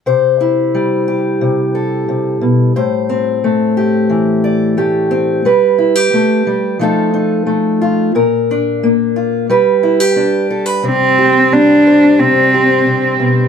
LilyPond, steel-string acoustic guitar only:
\new Staff \with { instrumentName = "Steel-string acoustic guitar" } { \time 4/4 \key c \major \tempo 4 = 89 << { c''8 e'4 g'4 a'4. | c''8 c'4 g'4 d''8 g'8 c'8 | b'8 e'16 g'4~ g'16 <a ees' f' a'>8 ees'4 f'8 | bes'8 d'4 f'8 b'8 e'16 g'8. a'16 b'16 |
r8 g'4 c''4 g'4. | } \\ { c4 g4 c4 c8 b,8 | a,4 a4 e4 a4 | g4 a8 g8 f4 a4 | bes,4 bes4 g4 d'4 |
c4 g4 c4 c8 b,8 | } >> }